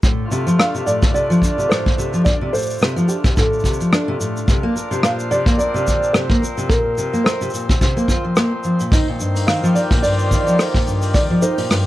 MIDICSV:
0, 0, Header, 1, 5, 480
1, 0, Start_track
1, 0, Tempo, 555556
1, 32, Time_signature, 4, 2, 24, 8
1, 10250, End_track
2, 0, Start_track
2, 0, Title_t, "Felt piano"
2, 0, Program_c, 0, 0
2, 508, Note_on_c, 0, 77, 101
2, 733, Note_off_c, 0, 77, 0
2, 746, Note_on_c, 0, 74, 101
2, 972, Note_off_c, 0, 74, 0
2, 985, Note_on_c, 0, 74, 107
2, 1463, Note_on_c, 0, 72, 100
2, 1483, Note_off_c, 0, 74, 0
2, 1939, Note_on_c, 0, 74, 114
2, 1962, Note_off_c, 0, 72, 0
2, 2186, Note_on_c, 0, 72, 99
2, 2193, Note_off_c, 0, 74, 0
2, 2663, Note_on_c, 0, 67, 85
2, 2683, Note_off_c, 0, 72, 0
2, 2718, Note_off_c, 0, 67, 0
2, 2903, Note_on_c, 0, 69, 89
2, 3593, Note_off_c, 0, 69, 0
2, 4348, Note_on_c, 0, 77, 106
2, 4403, Note_off_c, 0, 77, 0
2, 4587, Note_on_c, 0, 74, 108
2, 4808, Note_off_c, 0, 74, 0
2, 4821, Note_on_c, 0, 74, 103
2, 5299, Note_on_c, 0, 72, 89
2, 5321, Note_off_c, 0, 74, 0
2, 5751, Note_off_c, 0, 72, 0
2, 5784, Note_on_c, 0, 70, 105
2, 6234, Note_off_c, 0, 70, 0
2, 6257, Note_on_c, 0, 72, 78
2, 7190, Note_off_c, 0, 72, 0
2, 8181, Note_on_c, 0, 77, 100
2, 8422, Note_on_c, 0, 74, 101
2, 8433, Note_off_c, 0, 77, 0
2, 8477, Note_off_c, 0, 74, 0
2, 8662, Note_on_c, 0, 74, 110
2, 9150, Note_on_c, 0, 72, 95
2, 9162, Note_off_c, 0, 74, 0
2, 9623, Note_on_c, 0, 74, 111
2, 9645, Note_off_c, 0, 72, 0
2, 9850, Note_off_c, 0, 74, 0
2, 9868, Note_on_c, 0, 72, 94
2, 10250, Note_off_c, 0, 72, 0
2, 10250, End_track
3, 0, Start_track
3, 0, Title_t, "Accordion"
3, 0, Program_c, 1, 21
3, 34, Note_on_c, 1, 50, 83
3, 216, Note_on_c, 1, 65, 88
3, 229, Note_on_c, 1, 57, 78
3, 679, Note_on_c, 1, 62, 67
3, 3872, Note_on_c, 1, 46, 79
3, 3873, Note_off_c, 1, 50, 0
3, 3874, Note_off_c, 1, 57, 0
3, 4242, Note_on_c, 1, 72, 86
3, 4278, Note_on_c, 1, 53, 84
3, 4708, Note_on_c, 1, 60, 78
3, 5285, Note_off_c, 1, 65, 0
3, 5420, Note_off_c, 1, 62, 0
3, 7708, Note_off_c, 1, 53, 0
3, 7712, Note_off_c, 1, 46, 0
3, 7715, Note_on_c, 1, 51, 70
3, 8065, Note_on_c, 1, 58, 83
3, 8306, Note_on_c, 1, 65, 71
3, 8333, Note_on_c, 1, 67, 89
3, 8397, Note_off_c, 1, 60, 0
3, 9186, Note_off_c, 1, 72, 0
3, 10250, Note_off_c, 1, 51, 0
3, 10250, Note_off_c, 1, 58, 0
3, 10250, Note_off_c, 1, 65, 0
3, 10250, Note_off_c, 1, 67, 0
3, 10250, End_track
4, 0, Start_track
4, 0, Title_t, "Steel-string acoustic guitar"
4, 0, Program_c, 2, 25
4, 31, Note_on_c, 2, 45, 83
4, 260, Note_off_c, 2, 45, 0
4, 271, Note_on_c, 2, 48, 98
4, 392, Note_off_c, 2, 48, 0
4, 403, Note_on_c, 2, 53, 97
4, 499, Note_off_c, 2, 53, 0
4, 510, Note_on_c, 2, 62, 86
4, 632, Note_off_c, 2, 62, 0
4, 644, Note_on_c, 2, 48, 103
4, 740, Note_off_c, 2, 48, 0
4, 749, Note_on_c, 2, 45, 79
4, 980, Note_off_c, 2, 45, 0
4, 987, Note_on_c, 2, 48, 100
4, 1110, Note_off_c, 2, 48, 0
4, 1124, Note_on_c, 2, 53, 100
4, 1220, Note_off_c, 2, 53, 0
4, 1230, Note_on_c, 2, 62, 69
4, 1352, Note_off_c, 2, 62, 0
4, 1365, Note_on_c, 2, 48, 92
4, 1460, Note_off_c, 2, 48, 0
4, 1470, Note_on_c, 2, 45, 76
4, 1700, Note_off_c, 2, 45, 0
4, 1711, Note_on_c, 2, 48, 104
4, 1832, Note_off_c, 2, 48, 0
4, 1845, Note_on_c, 2, 53, 103
4, 1941, Note_off_c, 2, 53, 0
4, 1950, Note_on_c, 2, 62, 78
4, 2072, Note_off_c, 2, 62, 0
4, 2085, Note_on_c, 2, 48, 93
4, 2180, Note_off_c, 2, 48, 0
4, 2190, Note_on_c, 2, 45, 79
4, 2420, Note_off_c, 2, 45, 0
4, 2430, Note_on_c, 2, 48, 100
4, 2552, Note_off_c, 2, 48, 0
4, 2562, Note_on_c, 2, 53, 108
4, 2659, Note_off_c, 2, 53, 0
4, 2670, Note_on_c, 2, 62, 78
4, 2792, Note_off_c, 2, 62, 0
4, 2803, Note_on_c, 2, 48, 102
4, 2900, Note_off_c, 2, 48, 0
4, 2912, Note_on_c, 2, 45, 87
4, 3141, Note_off_c, 2, 45, 0
4, 3153, Note_on_c, 2, 48, 93
4, 3273, Note_off_c, 2, 48, 0
4, 3286, Note_on_c, 2, 53, 93
4, 3381, Note_off_c, 2, 53, 0
4, 3392, Note_on_c, 2, 62, 82
4, 3513, Note_off_c, 2, 62, 0
4, 3525, Note_on_c, 2, 48, 103
4, 3621, Note_off_c, 2, 48, 0
4, 3631, Note_on_c, 2, 45, 80
4, 3861, Note_off_c, 2, 45, 0
4, 3869, Note_on_c, 2, 48, 97
4, 3991, Note_off_c, 2, 48, 0
4, 4003, Note_on_c, 2, 58, 90
4, 4099, Note_off_c, 2, 58, 0
4, 4110, Note_on_c, 2, 70, 72
4, 4232, Note_off_c, 2, 70, 0
4, 4242, Note_on_c, 2, 48, 97
4, 4339, Note_off_c, 2, 48, 0
4, 4347, Note_on_c, 2, 46, 85
4, 4579, Note_off_c, 2, 46, 0
4, 4587, Note_on_c, 2, 48, 112
4, 4710, Note_off_c, 2, 48, 0
4, 4721, Note_on_c, 2, 58, 104
4, 4818, Note_off_c, 2, 58, 0
4, 4825, Note_on_c, 2, 70, 87
4, 4949, Note_off_c, 2, 70, 0
4, 4960, Note_on_c, 2, 48, 99
4, 5058, Note_off_c, 2, 48, 0
4, 5067, Note_on_c, 2, 46, 73
4, 5299, Note_off_c, 2, 46, 0
4, 5309, Note_on_c, 2, 48, 101
4, 5431, Note_off_c, 2, 48, 0
4, 5440, Note_on_c, 2, 58, 101
4, 5538, Note_off_c, 2, 58, 0
4, 5546, Note_on_c, 2, 70, 75
4, 5670, Note_off_c, 2, 70, 0
4, 5681, Note_on_c, 2, 48, 101
4, 5778, Note_off_c, 2, 48, 0
4, 5787, Note_on_c, 2, 46, 74
4, 6019, Note_off_c, 2, 46, 0
4, 6028, Note_on_c, 2, 48, 93
4, 6151, Note_off_c, 2, 48, 0
4, 6164, Note_on_c, 2, 58, 94
4, 6260, Note_off_c, 2, 58, 0
4, 6268, Note_on_c, 2, 70, 87
4, 6391, Note_off_c, 2, 70, 0
4, 6403, Note_on_c, 2, 48, 102
4, 6499, Note_off_c, 2, 48, 0
4, 6509, Note_on_c, 2, 46, 78
4, 6740, Note_off_c, 2, 46, 0
4, 6748, Note_on_c, 2, 48, 104
4, 6871, Note_off_c, 2, 48, 0
4, 6884, Note_on_c, 2, 58, 95
4, 6980, Note_off_c, 2, 58, 0
4, 6988, Note_on_c, 2, 65, 89
4, 7111, Note_off_c, 2, 65, 0
4, 7125, Note_on_c, 2, 53, 69
4, 7220, Note_off_c, 2, 53, 0
4, 7229, Note_on_c, 2, 58, 88
4, 7351, Note_off_c, 2, 58, 0
4, 7469, Note_on_c, 2, 53, 73
4, 7591, Note_off_c, 2, 53, 0
4, 7605, Note_on_c, 2, 46, 98
4, 7700, Note_off_c, 2, 46, 0
4, 7712, Note_on_c, 2, 63, 82
4, 7833, Note_off_c, 2, 63, 0
4, 7843, Note_on_c, 2, 46, 87
4, 7940, Note_off_c, 2, 46, 0
4, 7949, Note_on_c, 2, 43, 78
4, 8180, Note_off_c, 2, 43, 0
4, 8191, Note_on_c, 2, 51, 82
4, 8312, Note_off_c, 2, 51, 0
4, 8324, Note_on_c, 2, 53, 111
4, 8420, Note_off_c, 2, 53, 0
4, 8430, Note_on_c, 2, 63, 83
4, 8552, Note_off_c, 2, 63, 0
4, 8565, Note_on_c, 2, 46, 97
4, 8660, Note_off_c, 2, 46, 0
4, 8672, Note_on_c, 2, 43, 81
4, 8901, Note_off_c, 2, 43, 0
4, 8910, Note_on_c, 2, 51, 74
4, 9032, Note_off_c, 2, 51, 0
4, 9043, Note_on_c, 2, 53, 94
4, 9140, Note_off_c, 2, 53, 0
4, 9149, Note_on_c, 2, 63, 79
4, 9271, Note_off_c, 2, 63, 0
4, 9284, Note_on_c, 2, 46, 97
4, 9380, Note_off_c, 2, 46, 0
4, 9389, Note_on_c, 2, 43, 76
4, 9620, Note_off_c, 2, 43, 0
4, 9627, Note_on_c, 2, 51, 87
4, 9750, Note_off_c, 2, 51, 0
4, 9764, Note_on_c, 2, 53, 95
4, 9860, Note_off_c, 2, 53, 0
4, 9870, Note_on_c, 2, 63, 80
4, 9992, Note_off_c, 2, 63, 0
4, 10004, Note_on_c, 2, 46, 101
4, 10100, Note_off_c, 2, 46, 0
4, 10110, Note_on_c, 2, 43, 78
4, 10250, Note_off_c, 2, 43, 0
4, 10250, End_track
5, 0, Start_track
5, 0, Title_t, "Drums"
5, 27, Note_on_c, 9, 36, 110
5, 30, Note_on_c, 9, 82, 64
5, 114, Note_off_c, 9, 36, 0
5, 116, Note_off_c, 9, 82, 0
5, 275, Note_on_c, 9, 82, 72
5, 361, Note_off_c, 9, 82, 0
5, 412, Note_on_c, 9, 82, 49
5, 498, Note_off_c, 9, 82, 0
5, 514, Note_on_c, 9, 37, 102
5, 521, Note_on_c, 9, 82, 54
5, 601, Note_off_c, 9, 37, 0
5, 607, Note_off_c, 9, 82, 0
5, 651, Note_on_c, 9, 82, 45
5, 737, Note_off_c, 9, 82, 0
5, 757, Note_on_c, 9, 82, 91
5, 844, Note_off_c, 9, 82, 0
5, 886, Note_on_c, 9, 36, 107
5, 887, Note_on_c, 9, 82, 52
5, 973, Note_off_c, 9, 36, 0
5, 973, Note_off_c, 9, 82, 0
5, 998, Note_on_c, 9, 82, 54
5, 1084, Note_off_c, 9, 82, 0
5, 1134, Note_on_c, 9, 82, 45
5, 1220, Note_off_c, 9, 82, 0
5, 1225, Note_on_c, 9, 36, 52
5, 1242, Note_on_c, 9, 82, 87
5, 1311, Note_off_c, 9, 36, 0
5, 1328, Note_off_c, 9, 82, 0
5, 1378, Note_on_c, 9, 82, 51
5, 1464, Note_off_c, 9, 82, 0
5, 1483, Note_on_c, 9, 37, 109
5, 1483, Note_on_c, 9, 82, 60
5, 1569, Note_off_c, 9, 37, 0
5, 1569, Note_off_c, 9, 82, 0
5, 1609, Note_on_c, 9, 36, 105
5, 1696, Note_off_c, 9, 36, 0
5, 1720, Note_on_c, 9, 82, 79
5, 1806, Note_off_c, 9, 82, 0
5, 1846, Note_on_c, 9, 82, 45
5, 1933, Note_off_c, 9, 82, 0
5, 1952, Note_on_c, 9, 82, 65
5, 1953, Note_on_c, 9, 36, 127
5, 2038, Note_off_c, 9, 82, 0
5, 2039, Note_off_c, 9, 36, 0
5, 2199, Note_on_c, 9, 82, 82
5, 2231, Note_off_c, 9, 82, 0
5, 2231, Note_on_c, 9, 82, 71
5, 2264, Note_off_c, 9, 82, 0
5, 2264, Note_on_c, 9, 82, 56
5, 2299, Note_off_c, 9, 82, 0
5, 2299, Note_on_c, 9, 82, 47
5, 2333, Note_off_c, 9, 82, 0
5, 2333, Note_on_c, 9, 82, 49
5, 2359, Note_off_c, 9, 82, 0
5, 2359, Note_on_c, 9, 82, 34
5, 2385, Note_off_c, 9, 82, 0
5, 2385, Note_on_c, 9, 82, 27
5, 2405, Note_off_c, 9, 82, 0
5, 2405, Note_on_c, 9, 82, 39
5, 2414, Note_off_c, 9, 82, 0
5, 2414, Note_on_c, 9, 82, 23
5, 2433, Note_off_c, 9, 82, 0
5, 2433, Note_on_c, 9, 82, 61
5, 2442, Note_on_c, 9, 37, 96
5, 2519, Note_off_c, 9, 82, 0
5, 2529, Note_off_c, 9, 37, 0
5, 2569, Note_on_c, 9, 82, 50
5, 2656, Note_off_c, 9, 82, 0
5, 2669, Note_on_c, 9, 82, 89
5, 2756, Note_off_c, 9, 82, 0
5, 2802, Note_on_c, 9, 36, 119
5, 2808, Note_on_c, 9, 82, 47
5, 2889, Note_off_c, 9, 36, 0
5, 2894, Note_off_c, 9, 82, 0
5, 2910, Note_on_c, 9, 82, 60
5, 2913, Note_on_c, 9, 36, 107
5, 2997, Note_off_c, 9, 82, 0
5, 2999, Note_off_c, 9, 36, 0
5, 3050, Note_on_c, 9, 82, 20
5, 3104, Note_off_c, 9, 82, 0
5, 3104, Note_on_c, 9, 82, 25
5, 3144, Note_on_c, 9, 36, 58
5, 3154, Note_off_c, 9, 82, 0
5, 3154, Note_on_c, 9, 82, 91
5, 3157, Note_off_c, 9, 82, 0
5, 3157, Note_on_c, 9, 82, 32
5, 3225, Note_off_c, 9, 82, 0
5, 3225, Note_on_c, 9, 82, 42
5, 3230, Note_off_c, 9, 36, 0
5, 3289, Note_off_c, 9, 82, 0
5, 3289, Note_on_c, 9, 82, 53
5, 3376, Note_off_c, 9, 82, 0
5, 3392, Note_on_c, 9, 37, 99
5, 3397, Note_on_c, 9, 82, 60
5, 3478, Note_off_c, 9, 37, 0
5, 3483, Note_off_c, 9, 82, 0
5, 3637, Note_on_c, 9, 82, 87
5, 3724, Note_off_c, 9, 82, 0
5, 3774, Note_on_c, 9, 82, 54
5, 3861, Note_off_c, 9, 82, 0
5, 3870, Note_on_c, 9, 36, 119
5, 3875, Note_on_c, 9, 82, 64
5, 3957, Note_off_c, 9, 36, 0
5, 3962, Note_off_c, 9, 82, 0
5, 4120, Note_on_c, 9, 82, 82
5, 4206, Note_off_c, 9, 82, 0
5, 4253, Note_on_c, 9, 82, 50
5, 4339, Note_off_c, 9, 82, 0
5, 4348, Note_on_c, 9, 37, 104
5, 4359, Note_on_c, 9, 82, 60
5, 4434, Note_off_c, 9, 37, 0
5, 4445, Note_off_c, 9, 82, 0
5, 4488, Note_on_c, 9, 82, 47
5, 4574, Note_off_c, 9, 82, 0
5, 4594, Note_on_c, 9, 82, 93
5, 4681, Note_off_c, 9, 82, 0
5, 4719, Note_on_c, 9, 36, 116
5, 4729, Note_on_c, 9, 82, 47
5, 4805, Note_off_c, 9, 36, 0
5, 4815, Note_off_c, 9, 82, 0
5, 4837, Note_on_c, 9, 82, 58
5, 4923, Note_off_c, 9, 82, 0
5, 4974, Note_on_c, 9, 82, 45
5, 5060, Note_off_c, 9, 82, 0
5, 5075, Note_on_c, 9, 82, 83
5, 5078, Note_on_c, 9, 36, 54
5, 5162, Note_off_c, 9, 82, 0
5, 5165, Note_off_c, 9, 36, 0
5, 5213, Note_on_c, 9, 82, 47
5, 5299, Note_off_c, 9, 82, 0
5, 5308, Note_on_c, 9, 37, 102
5, 5315, Note_on_c, 9, 82, 57
5, 5394, Note_off_c, 9, 37, 0
5, 5401, Note_off_c, 9, 82, 0
5, 5440, Note_on_c, 9, 36, 104
5, 5527, Note_off_c, 9, 36, 0
5, 5565, Note_on_c, 9, 82, 82
5, 5652, Note_off_c, 9, 82, 0
5, 5686, Note_on_c, 9, 82, 51
5, 5773, Note_off_c, 9, 82, 0
5, 5785, Note_on_c, 9, 36, 122
5, 5798, Note_on_c, 9, 82, 62
5, 5872, Note_off_c, 9, 36, 0
5, 5884, Note_off_c, 9, 82, 0
5, 6030, Note_on_c, 9, 82, 84
5, 6116, Note_off_c, 9, 82, 0
5, 6169, Note_on_c, 9, 82, 50
5, 6256, Note_off_c, 9, 82, 0
5, 6273, Note_on_c, 9, 37, 103
5, 6284, Note_on_c, 9, 82, 65
5, 6360, Note_off_c, 9, 37, 0
5, 6371, Note_off_c, 9, 82, 0
5, 6407, Note_on_c, 9, 82, 50
5, 6479, Note_off_c, 9, 82, 0
5, 6479, Note_on_c, 9, 82, 40
5, 6518, Note_off_c, 9, 82, 0
5, 6518, Note_on_c, 9, 82, 82
5, 6558, Note_off_c, 9, 82, 0
5, 6558, Note_on_c, 9, 82, 32
5, 6645, Note_off_c, 9, 82, 0
5, 6647, Note_on_c, 9, 36, 101
5, 6655, Note_on_c, 9, 82, 53
5, 6734, Note_off_c, 9, 36, 0
5, 6741, Note_off_c, 9, 82, 0
5, 6751, Note_on_c, 9, 36, 99
5, 6753, Note_on_c, 9, 82, 61
5, 6837, Note_off_c, 9, 36, 0
5, 6839, Note_off_c, 9, 82, 0
5, 6891, Note_on_c, 9, 82, 45
5, 6978, Note_off_c, 9, 82, 0
5, 6984, Note_on_c, 9, 36, 62
5, 6992, Note_on_c, 9, 82, 83
5, 7070, Note_off_c, 9, 36, 0
5, 7078, Note_off_c, 9, 82, 0
5, 7224, Note_on_c, 9, 82, 56
5, 7230, Note_on_c, 9, 37, 95
5, 7233, Note_off_c, 9, 82, 0
5, 7233, Note_on_c, 9, 82, 60
5, 7317, Note_off_c, 9, 37, 0
5, 7319, Note_off_c, 9, 82, 0
5, 7464, Note_on_c, 9, 82, 86
5, 7550, Note_off_c, 9, 82, 0
5, 7604, Note_on_c, 9, 82, 48
5, 7690, Note_off_c, 9, 82, 0
5, 7704, Note_on_c, 9, 36, 127
5, 7714, Note_on_c, 9, 82, 62
5, 7716, Note_on_c, 9, 46, 67
5, 7791, Note_off_c, 9, 36, 0
5, 7800, Note_off_c, 9, 82, 0
5, 7802, Note_off_c, 9, 46, 0
5, 7950, Note_on_c, 9, 82, 82
5, 8036, Note_off_c, 9, 82, 0
5, 8088, Note_on_c, 9, 82, 55
5, 8089, Note_on_c, 9, 46, 53
5, 8174, Note_off_c, 9, 82, 0
5, 8175, Note_off_c, 9, 46, 0
5, 8187, Note_on_c, 9, 82, 56
5, 8191, Note_on_c, 9, 37, 97
5, 8196, Note_on_c, 9, 46, 66
5, 8274, Note_off_c, 9, 82, 0
5, 8277, Note_off_c, 9, 37, 0
5, 8282, Note_off_c, 9, 46, 0
5, 8334, Note_on_c, 9, 82, 46
5, 8420, Note_off_c, 9, 82, 0
5, 8429, Note_on_c, 9, 46, 42
5, 8433, Note_on_c, 9, 82, 86
5, 8515, Note_off_c, 9, 46, 0
5, 8519, Note_off_c, 9, 82, 0
5, 8561, Note_on_c, 9, 36, 104
5, 8565, Note_on_c, 9, 46, 57
5, 8567, Note_on_c, 9, 82, 44
5, 8648, Note_off_c, 9, 36, 0
5, 8651, Note_off_c, 9, 46, 0
5, 8653, Note_off_c, 9, 82, 0
5, 8671, Note_on_c, 9, 46, 61
5, 8671, Note_on_c, 9, 82, 57
5, 8757, Note_off_c, 9, 46, 0
5, 8757, Note_off_c, 9, 82, 0
5, 8807, Note_on_c, 9, 82, 42
5, 8893, Note_off_c, 9, 82, 0
5, 8908, Note_on_c, 9, 46, 52
5, 8910, Note_on_c, 9, 36, 59
5, 8915, Note_on_c, 9, 82, 83
5, 8994, Note_off_c, 9, 46, 0
5, 8996, Note_off_c, 9, 36, 0
5, 9002, Note_off_c, 9, 82, 0
5, 9052, Note_on_c, 9, 82, 48
5, 9138, Note_off_c, 9, 82, 0
5, 9152, Note_on_c, 9, 37, 89
5, 9155, Note_on_c, 9, 46, 66
5, 9156, Note_on_c, 9, 82, 61
5, 9238, Note_off_c, 9, 37, 0
5, 9242, Note_off_c, 9, 46, 0
5, 9242, Note_off_c, 9, 82, 0
5, 9283, Note_on_c, 9, 36, 105
5, 9288, Note_on_c, 9, 46, 59
5, 9369, Note_off_c, 9, 36, 0
5, 9374, Note_off_c, 9, 46, 0
5, 9395, Note_on_c, 9, 82, 91
5, 9481, Note_off_c, 9, 82, 0
5, 9522, Note_on_c, 9, 82, 49
5, 9524, Note_on_c, 9, 46, 58
5, 9609, Note_off_c, 9, 82, 0
5, 9611, Note_off_c, 9, 46, 0
5, 9628, Note_on_c, 9, 36, 116
5, 9629, Note_on_c, 9, 46, 75
5, 9630, Note_on_c, 9, 82, 66
5, 9715, Note_off_c, 9, 36, 0
5, 9715, Note_off_c, 9, 46, 0
5, 9716, Note_off_c, 9, 82, 0
5, 9871, Note_on_c, 9, 82, 90
5, 9957, Note_off_c, 9, 82, 0
5, 10004, Note_on_c, 9, 46, 71
5, 10007, Note_on_c, 9, 82, 49
5, 10091, Note_off_c, 9, 46, 0
5, 10093, Note_off_c, 9, 82, 0
5, 10110, Note_on_c, 9, 46, 72
5, 10116, Note_on_c, 9, 37, 89
5, 10118, Note_on_c, 9, 82, 61
5, 10197, Note_off_c, 9, 46, 0
5, 10203, Note_off_c, 9, 37, 0
5, 10205, Note_off_c, 9, 82, 0
5, 10250, End_track
0, 0, End_of_file